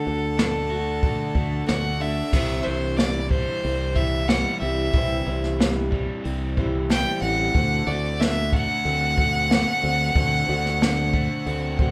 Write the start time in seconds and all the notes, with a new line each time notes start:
Already playing: D3 A4
0.05 D2 D4 F#4 A4
0.37 A3 D4 F#4 A4, snare, open hi-hat
0.70 D4 F#4 A4
1.03 D3 A3 D4 F#4 A4, kick, open hi-hat
1.35 D2 A3, kick
1.68 D2 A3 D4 F#4 A4 F#5, snare, open hi-hat
2.00 D4 F#4 A4 E5
2.32 C2 C3 E3 G3 C4, kick, crash
2.36 E4 C5
2.63 E3 C5
2.67 C2 G3 C4 E4
2.97 E3 G3 C4 E4 C5 D5, snare, open hi-hat
3.30 G3 C5, kick
3.63 C2 C4, open hi-hat
3.95 E3 G3 C4 E4 C5 E5, kick
4.28 G3 C4 E4 C5 F#5, snare, open hi-hat
4.59 C2 C4 C5 E5
4.64 G3 C4 E4
4.93 C2 C3 E3 G3 C4 E4, kick, open hi-hat
4.97 C5
5.26 C2 E3 C4 E4 C5
5.30 G3
5.44 snare
5.59 E3 G3 C4 E4 C5, snare, open hi-hat
5.91 G3, kick
6.24 C2 C4, open hi-hat
6.57 E3 G3 C4 E4 C5, kick
6.89 G3 C4 E4 C5 G5, snare, open hi-hat
7.21 A1 C4 E4 C5 F#5
7.27 G3
7.54 D2 D3 A3 C4 F#4 C5, kick, open hi-hat
7.87 D2 A3 C4 F#4 C5 D5
8.20 D3 A3 C4 F#4 C5 E5, snare, open hi-hat
8.53 A3 F#5, kick
8.85 D2 C4, open hi-hat
9.17 D3 C4 F#4 C5, kick
9.50 A3 C4 F#4 C5, snare, open hi-hat
9.83 D2 C4 F#4 C5
10.15 D2 D3 A3 C4 F#4 C5, kick, open hi-hat
10.48 D2 A3 C4 F#4 C5
10.66 snare
10.80 D3 A3 C4 F#4 C5, snare, open hi-hat
11.14 A3, kick
11.46 D2 C4, open hi-hat
11.79 D3 C4 F#4 C5, kick